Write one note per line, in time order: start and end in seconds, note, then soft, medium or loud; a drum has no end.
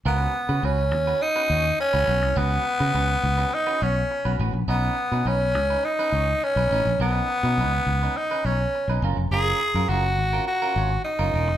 0.05 0.26 C#2 loud
0.05 0.67 B3 medium
0.05 0.16 C4 medium
0.05 0.17 F4 medium
0.05 0.17 A#4 medium
0.16 0.32 C#4 medium
0.16 0.32 F#4 medium
0.16 0.33 B4 medium
0.35 muted clean electric guitar stroke soft
0.49 0.59 C#3 medium
0.49 0.62 C#4 soft
0.49 0.63 F#4 medium
0.49 0.63 B4 medium
0.63 0.92 C#2 medium
0.63 0.81 C#4 medium
0.63 1.24 C#4 medium
0.63 0.78 F#4 medium
0.63 0.77 B4 medium
0.79 muted clean electric guitar stroke soft
0.92 1.12 D#2 medium
0.92 muted clean electric guitar stroke soft
1.07 1.21 C#4 soft
1.07 1.21 F#4 soft
1.07 1.21 B4 medium
1.22 1.79 D#4 loud
1.22 muted clean electric guitar stroke soft
1.36 1.49 C#4 medium
1.36 1.50 F#4 medium
1.36 1.50 B4 medium
1.50 1.70 D#2 medium
1.50 1.64 C#4 medium
1.50 1.64 F#4 medium
1.50 1.64 C#5 medium
1.65 muted clean electric guitar stroke soft
1.79 2.39 C#4 loud
1.79 muted clean electric guitar stroke soft
1.93 2.04 C#2 medium
1.93 2.06 C#4 medium
1.93 2.07 F#4 medium
1.93 2.07 B4 medium
2.07 2.22 B1 medium
2.07 2.25 C#4 medium
2.07 2.21 F#4 medium
2.07 2.21 B4 medium
2.22 2.32 C2 medium
2.22 muted clean electric guitar stroke soft
2.36 2.57 C#2 loud
2.36 3.56 B3 loud
2.36 2.63 C#4 medium
2.36 2.63 F#4 medium
2.36 2.63 B4 medium
2.80 2.90 C#3 medium
2.80 2.93 C#4 soft
2.80 2.93 F#4 soft
2.80 2.94 B4 medium
2.94 3.15 C#2 medium
2.94 3.12 C#4 medium
2.94 3.09 F#4 medium
2.94 3.08 B4 medium
3.10 muted clean electric guitar stroke soft
3.23 3.44 C#2 medium
3.23 muted clean electric guitar stroke soft
3.38 3.51 C#4 soft
3.38 3.51 F#4 soft
3.38 3.52 B4 medium
3.52 3.84 D#4 loud
3.52 muted clean electric guitar stroke soft
3.67 3.80 C#4 medium
3.67 3.81 F#4 medium
3.67 3.82 B4 medium
3.82 4.02 B1 medium
3.82 3.95 C#4 medium
3.82 4.40 C#4 medium
3.82 3.96 F#4 medium
3.82 3.95 C#5 medium
3.96 muted clean electric guitar stroke soft
4.11 muted clean electric guitar stroke soft
4.25 4.35 B1 medium
4.25 4.38 C#4 medium
4.25 4.39 F#4 medium
4.25 4.39 B4 medium
4.39 4.50 A1 medium
4.39 4.57 C#4 medium
4.39 4.53 F#4 medium
4.39 4.53 B4 medium
4.53 4.64 A#1 medium
4.53 muted clean electric guitar stroke soft
4.68 4.89 B1 medium
4.68 5.29 B3 medium
4.68 4.95 C#4 medium
4.68 4.95 D#4 medium
4.68 4.95 B4 medium
5.12 5.22 B2 medium
5.12 5.25 C#4 medium
5.12 5.25 D#4 soft
5.12 5.26 B4 medium
5.25 5.55 B1 medium
5.25 5.44 C#4 medium
5.25 5.86 C#4 medium
5.25 5.40 D#4 medium
5.25 5.39 B4 medium
5.41 muted clean electric guitar stroke soft
5.55 5.75 C#2 medium
5.55 muted clean electric guitar stroke soft
5.70 5.83 C#4 soft
5.70 5.84 D#4 soft
5.70 5.84 B4 medium
5.85 6.45 D#4 loud
5.85 muted clean electric guitar stroke soft
5.99 6.12 C#4 medium
5.99 6.13 D#4 medium
5.99 6.14 B4 medium
6.12 6.33 C#2 medium
6.12 6.27 C#4 medium
6.12 6.27 D#4 medium
6.12 6.28 C#5 medium
6.28 muted clean electric guitar stroke medium
6.43 7.01 C#4 loud
6.43 muted clean electric guitar stroke soft
6.56 6.66 B1 medium
6.56 6.71 C#4 soft
6.56 6.71 D#4 soft
6.56 6.70 B4 medium
6.71 6.81 A1 medium
6.71 6.89 C#4 medium
6.71 6.86 D#4 medium
6.71 6.86 B4 medium
6.85 6.96 A#1 medium
6.85 muted clean electric guitar stroke soft
7.00 7.20 B1 loud
7.00 8.18 B3 medium
7.00 7.11 C4 medium
7.00 7.12 D4 medium
7.00 7.12 A#4 medium
7.11 7.27 C#4 medium
7.11 7.27 D#4 medium
7.11 7.27 B4 medium
7.30 muted clean electric guitar stroke soft
7.43 7.59 B2 medium
7.43 7.58 C#4 medium
7.43 7.58 D#4 medium
7.43 7.57 B4 medium
7.58 7.78 C#2 medium
7.58 7.76 C#4 medium
7.58 7.73 D#4 medium
7.58 7.72 B4 medium
7.73 muted clean electric guitar stroke soft
7.86 8.07 C#2 medium
7.86 muted clean electric guitar stroke soft
8.03 8.16 C#4 soft
8.03 8.16 D#4 soft
8.03 8.16 B4 medium
8.17 8.47 D#4 medium
8.17 muted clean electric guitar stroke soft
8.31 8.44 C#4 medium
8.31 8.45 D#4 medium
8.31 8.46 B4 medium
8.45 8.65 B1 medium
8.45 8.59 C#4 medium
8.45 9.03 C#4 medium
8.45 8.59 D#4 medium
8.45 8.59 C#5 medium
8.61 muted clean electric guitar stroke soft
8.75 muted clean electric guitar stroke soft
8.88 8.98 B1 medium
8.88 9.02 C#4 soft
8.88 9.03 D#4 medium
8.88 9.02 B4 medium
9.02 9.13 F#1 loud
9.02 9.21 C#4 medium
9.02 9.17 F4 medium
9.02 9.17 A#4 medium
9.17 9.27 F1 medium
9.17 muted clean electric guitar stroke soft
9.31 9.52 F#1 medium
9.31 9.58 C#4 medium
9.31 9.59 F4 medium
9.31 9.90 G#4 loud
9.31 9.59 A#4 medium
9.61 muted clean electric guitar stroke soft
9.74 9.85 F#2 medium
9.74 9.89 C#4 medium
9.74 9.89 F4 medium
9.74 9.89 A#4 medium
9.89 10.18 F#1 loud
9.89 10.07 C#4 medium
9.89 10.05 F4 medium
9.89 10.46 F#4 medium
9.89 10.04 A#4 medium
10.05 muted clean electric guitar stroke soft
10.18 10.39 G#1 medium
10.18 muted clean electric guitar stroke soft
10.33 10.47 C#4 soft
10.33 10.47 F4 medium
10.33 10.47 A#4 medium
10.47 11.01 F#4 medium
10.47 muted clean electric guitar stroke soft
10.62 10.76 C#4 medium
10.62 10.76 F4 medium
10.62 10.77 A#4 medium
10.76 10.97 G#1 loud
10.76 10.90 C#4 medium
10.76 10.90 F4 medium
10.76 10.91 C#5 medium
10.91 muted clean electric guitar stroke soft
11.05 11.57 D#4 medium
11.05 muted clean electric guitar stroke soft
11.19 11.30 F#1 medium
11.19 11.33 C#4 medium
11.19 11.33 F4 medium
11.19 11.34 A#4 medium
11.34 11.48 E1 medium
11.34 11.48 C#4 medium
11.34 11.48 F4 medium
11.34 11.47 A#4 medium
11.48 11.57 F1 medium
11.48 muted clean electric guitar stroke soft